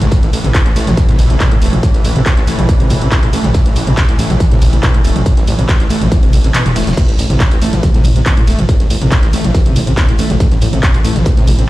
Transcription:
Already playing: A2 E3
0.01 A1 G#2, snare, closed hi-hat, mid tom
0.11 A2, kick, closed hi-hat, ride
0.23 A1, snare, closed hi-hat
0.33 A1, closed hi-hat, open hi-hat, ride
0.44 A1 C3, closed hi-hat, mid tom
0.54 kick, snare, clap, closed hi-hat, ride
0.66 A1, snare, closed hi-hat
0.76 A1 A3, closed hi-hat, open hi-hat, ride
0.87 A1 E3, closed hi-hat, mid tom
0.97 A2, kick, closed hi-hat, ride
1.09 A2 C3, snare, closed hi-hat
1.18 A1 G#2, closed hi-hat, mid tom, open hi-hat, ride
1.30 A1 C3, closed hi-hat
1.40 B2, kick, snare, clap, closed hi-hat, ride
1.51 A2, closed hi-hat
1.62 E1 A3, closed hi-hat, open hi-hat, ride
1.73 A1 E3, closed hi-hat, mid tom
1.83 A2, kick, closed hi-hat, ride
1.94 A1, snare, closed hi-hat
2.05 A1, closed hi-hat, open hi-hat, ride
2.16 A1 C3, closed hi-hat, mid tom
2.26 kick, snare, clap, closed hi-hat, ride
2.37 A1, snare, closed hi-hat
2.47 A1 A3, closed hi-hat, open hi-hat, ride
2.59 A1 E3, closed hi-hat, mid tom
2.69 A2, kick, closed hi-hat, ride
2.80 A1 C3, closed hi-hat
2.90 A1 G#2, snare, closed hi-hat, mid tom, open hi-hat, ride
3.01 A1 C3, closed hi-hat
3.12 B2, kick, snare, clap, closed hi-hat, ride
3.23 A1 A2, closed hi-hat
3.33 A1 A3, closed hi-hat, open hi-hat, ride
3.44 A1 E3, snare, closed hi-hat, mid tom
3.54 A2, kick, closed hi-hat, ride
3.66 A1, snare, closed hi-hat
3.76 A1, closed hi-hat, open hi-hat, ride
3.87 A1 C3, closed hi-hat, mid tom
3.97 kick, snare, clap, closed hi-hat, ride
4.08 A1, snare, closed hi-hat
4.19 A1 A3, closed hi-hat, open hi-hat, ride
4.30 A1 E3, closed hi-hat, mid tom
4.40 A2, kick, closed hi-hat, ride
4.51 A2 C3, snare, closed hi-hat
4.62 A1 G#2, closed hi-hat, mid tom, open hi-hat, ride
4.73 A1 C3, closed hi-hat
4.83 B2, kick, snare, clap, closed hi-hat, ride
4.94 A2, closed hi-hat
5.04 E1 A3, closed hi-hat, open hi-hat, ride
5.16 A1 E3, closed hi-hat, mid tom
5.26 A2, kick, closed hi-hat, ride
5.37 A1, snare, closed hi-hat
5.47 A1, closed hi-hat, open hi-hat, ride
5.59 A1 C3, closed hi-hat, mid tom
5.69 kick, snare, clap, closed hi-hat, ride
5.80 A1, snare, closed hi-hat
5.89 A1 A3, closed hi-hat, open hi-hat, ride
6.01 A1 E3, closed hi-hat, mid tom
6.11 A2, kick, closed hi-hat, ride
6.23 E1 C3, closed hi-hat
6.33 A1 G#2, closed hi-hat, mid tom, open hi-hat, ride
6.44 A1 C3, snare, closed hi-hat
6.54 B2, snare, clap, closed hi-hat, ride
6.66 E1 A2, snare, closed hi-hat, mid tom
6.76 E1 A3, snare, closed hi-hat, open hi-hat, ride
6.82 snare, closed hi-hat
6.87 E1 E3, snare, closed hi-hat, mid tom
6.92 snare, closed hi-hat
6.97 A2 E3, kick, closed hi-hat, ride, crash
7.09 A1, snare, closed hi-hat
7.19 A1, closed hi-hat, open hi-hat, ride
7.30 A1 C3, closed hi-hat, mid tom
7.40 A2, kick, snare, clap, closed hi-hat, ride
7.51 A1, snare, closed hi-hat
7.62 A1 A3, closed hi-hat, open hi-hat, ride
7.73 A1 E3, closed hi-hat, mid tom
7.83 A2, kick, closed hi-hat, ride
7.94 A2 C3, snare, closed hi-hat
8.04 A1 G#2, closed hi-hat, mid tom, open hi-hat, ride
8.16 A1 C3, closed hi-hat
8.26 B2, kick, snare, clap, closed hi-hat, ride
8.37 A2, closed hi-hat
8.47 E1 A3, closed hi-hat, open hi-hat, ride
8.59 A1 E3, closed hi-hat, mid tom
8.69 A2, kick, closed hi-hat, ride
8.80 A1, snare, closed hi-hat
8.90 A1, closed hi-hat, open hi-hat, ride
9.02 A1 C3, closed hi-hat, mid tom
9.11 A2, kick, snare, clap, closed hi-hat, ride
9.23 A1, snare, closed hi-hat
9.33 A1 A3, closed hi-hat, open hi-hat, ride
9.44 A1 E3, closed hi-hat, mid tom
9.55 A2, kick, closed hi-hat, ride
9.66 A1 C3, closed hi-hat
9.76 A1 G#2, snare, closed hi-hat, mid tom, open hi-hat, ride
9.87 A1 C3, closed hi-hat
9.97 B2, kick, snare, clap, closed hi-hat, ride
10.09 A1 A2, closed hi-hat
10.18 A1 A3, closed hi-hat, open hi-hat, ride
10.30 A1 E3, snare, closed hi-hat, mid tom
10.40 A2, kick, closed hi-hat, ride
10.51 A1, snare, closed hi-hat
10.61 A1, closed hi-hat, open hi-hat, ride
10.73 A1 C3, closed hi-hat, mid tom
10.83 A2, kick, snare, clap, closed hi-hat, ride
10.94 A1, snare, closed hi-hat
11.05 A1 A3, closed hi-hat, open hi-hat, ride
11.15 A1 E3, closed hi-hat, mid tom
11.25 A2, kick, closed hi-hat, ride
11.37 A2 C3, snare, closed hi-hat
11.47 A1 G#2, closed hi-hat, mid tom, open hi-hat, ride
11.59 A1 C3, closed hi-hat

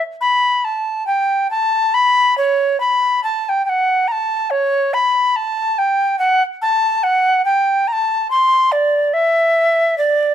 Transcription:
0.21 B5
0.65 A5
1.07 G5
1.51 A5
1.94 B5
2.38 C#5
2.80 B5
3.24 A5
3.45 A5
3.49 G5
3.66 F#5 G5
4.08 A#5
4.12 A5
4.51 C#5
4.94 B5
5.36 A5
5.78 G5
6.19 F#5
6.62 A5
7.03 F#5
7.45 G5
7.88 A#5
7.93 A5
8.31 C6
8.72 D5
9.14 E5
9.98 D5

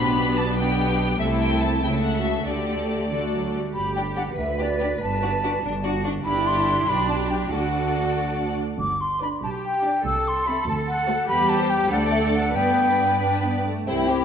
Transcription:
Already playing: B1 B2 B3 D4 G4 B4 B5
0.36 A5
0.57 B3 D4 G4 B4 G5
1.19 C2 C3 A3 E4 A4 E5
1.40 G5
1.61 A5
1.82 C#2 C#3 A3 E4 A4 E5 G5
2.02 F#5
2.16 F#4
2.24 E5
2.45 D2 D3 A3 G4 A4 D5
3.10 D3 A3 F#4 A4 D5
3.32 F#3
3.53 G3
3.74 G1 G4 B5
3.95 D4 G4 D5 G5
4.16 D4 G4 D5 F#5
4.36 D2 B4 E5
4.58 D4 G4 D5
4.80 D4 G4 D5
5.01 G1 A5
5.22 D4 F#4 D5
5.43 D4 F#4 D5
5.64 G1 D4
5.84 D4 F#4 D5
6.04 D4 F#4 D5
6.24 G1 D4 E4 G4 D5 B5
6.47 C6
6.87 B1 D4 G4 D5 B5
7.10 A5
7.30 G5
7.50 D2 D4 F#4 A4 D5 F#5
8.79 G1 D6
9.01 C6
9.21 D4 B4 D5 B5
9.42 B1 G4 A5
9.64 G5
9.84 D4 G4 D5
10.05 C2 A4 E6
10.28 C6
10.46 C4 G4 E5 B5
10.66 D2 A5
10.88 F#5
11.07 A3 F#4 C5
11.27 E2 G3 G4 B4 B5
11.49 A5
11.58 C5
11.70 G5
11.91 D2 A3 D4 A4 D5 F#5
12.12 E5
12.34 F#5
12.55 G2 B3 D4 B4 D5 G5
13.21 D4
13.44 B3
13.66 A3
13.87 C2 C4 E4 G4 C5 G5
14.08 E4 G4 C5

